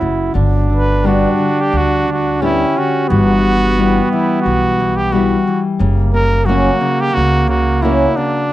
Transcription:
Already playing: E4 F#4
0.01 F#1 C#3
0.34 G1 D3 D4
0.70 D3
0.75 B4
1.03 G2 D3 G3 B3 D4 F#4 G4
1.38 D3
1.61 G4
1.72 D2 D3
1.77 F#4
2.08 D3
2.13 F#4
2.41 G2 D3 G3 B3 C#4 D4 E4 G4
2.77 D3 F#4
3.08 G1 E3 B3 F#4
3.44 E3
3.78 G3 B3 E4 G4
4.11 E3 E4
4.42 F#4
4.46 B1 E3
4.80 E3
4.96 G4
5.12 G3 B3 E4 F#4 G4
5.47 E3
5.79 F#1 C#3 A#3
6.14 C#3 A#4
6.45 F#2 C#3 F#3 A#3 C#4 F#4
6.81 C#3
7.00 G4
7.13 C#3 F#4
7.17 C#2
7.48 C#3 F#4
7.82 F#2 C#3 F#3 A#3 C#4 E4 F#4
8.16 C#3 D4

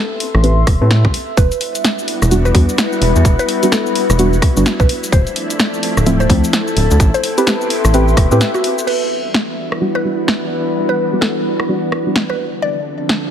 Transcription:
Already playing: D4 A4 E5 C6
0.20 open hi-hat
0.34 A1, cross-stick
0.43 C4 E4 G4 B4, closed hi-hat
0.67 E1, kick, cross-stick, open hi-hat
0.81 A2 C4 E4 G4 B4
0.91 snare, closed hi-hat
1.05 C2, kick, cross-stick
1.14 open hi-hat
1.37 E1 G3 B3 D4 E4 F#4 B4, kick, closed hi-hat, shaker
1.52 B4, closed hi-hat, shaker
1.61 open hi-hat
1.75 closed hi-hat, shaker
1.84 snare, closed hi-hat, shaker
1.99 shaker
2.08 open hi-hat
2.22 E1, cross-stick, shaker
2.31 G3 B3 D4 F#4, closed hi-hat, shaker
2.45 B4, cross-stick, shaker
2.55 E2 G3 B3 D4 F#4, kick, open hi-hat
2.69 shaker
2.78 snare, closed hi-hat, shaker
2.92 shaker
3.01 E1, open hi-hat
3.16 E2, shaker
3.25 E1 E4, kick, closed hi-hat, shaker
3.39 B4, closed hi-hat, shaker
3.49 open hi-hat
3.63 G3 B3 D4 F#4, closed hi-hat, shaker
3.72 A4, snare, closed hi-hat, shaker
3.86 shaker
3.95 open hi-hat
4.10 E1, cross-stick, shaker
4.19 G3 B3 D4 F#4, closed hi-hat, shaker
4.33 shaker
4.42 kick, cross-stick, open hi-hat
4.56 G1 G3 B3 D4 F#4, shaker
4.66 snare, closed hi-hat, shaker
4.80 B1 B4, kick, cross-stick, shaker
4.89 F3 A3 C4 D4, open hi-hat
5.03 shaker
5.09 D1 A4 C5, kick, closed hi-hat, shaker
5.27 closed hi-hat, shaker
5.36 open hi-hat
5.50 closed hi-hat, shaker
5.60 snare, closed hi-hat, shaker
5.74 shaker
5.83 open hi-hat
5.97 D1, cross-stick, shaker
6.06 F3 A3 C4 E4, closed hi-hat, shaker
6.20 C5, cross-stick, shaker
6.30 D2 F3 A3 C4 E4, kick, open hi-hat
6.44 shaker
6.53 snare, closed hi-hat, shaker
6.67 shaker
6.77 D1, open hi-hat
6.91 D2, shaker
7.00 A1 B3 C4 G4, kick, closed hi-hat, shaker
7.10 E5
7.14 C5, closed hi-hat, shaker
7.24 open hi-hat
7.38 C4 E4 G4 B4 C6, closed hi-hat, shaker
7.47 B4, snare, closed hi-hat, shaker
7.61 shaker
7.70 open hi-hat
7.85 A1, cross-stick, shaker
7.94 C4 E4 G4 B4, closed hi-hat, shaker
8.08 shaker
8.17 E1, kick, cross-stick, open hi-hat
8.31 A2 C4 E4 G4 B4, shaker
8.41 snare, closed hi-hat, shaker
8.54 F#4, cross-stick, shaker
8.64 open hi-hat
8.78 shaker
8.87 E3 G3 B3 D4 E4 F#4 B4, crash
8.93 B4
9.34 snare
9.72 cross-stick
9.81 G3 B3 D4 F#4
9.95 B4, cross-stick
10.05 G3 B3 D4 F#4
10.28 snare
10.89 B4
11.13 G3 B3 D4 F#4
11.21 A4, snare
11.60 cross-stick
11.69 G3 B3 D4 F#4
11.92 cross-stick
12.06 G3 B3 D4 F#4
12.16 snare
12.30 B4, cross-stick
12.39 D3 F3 C4 D4 E4 A4
12.62 D5
12.67 A4
13.09 snare

